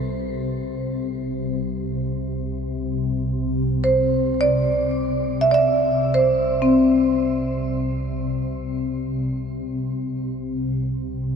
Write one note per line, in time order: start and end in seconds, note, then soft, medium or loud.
0.00 10.54 C2 medium
0.00 10.54 C3 medium
0.00 1.35 C5 medium
3.84 4.44 C5 medium
4.41 5.47 D5 medium
5.41 5.49 E5 medium
5.51 5.58 D5 medium
5.51 6.14 E5 medium
6.14 6.66 C5 medium
6.62 9.11 C4 medium
10.55 11.36 C2 medium
10.55 11.36 C3 medium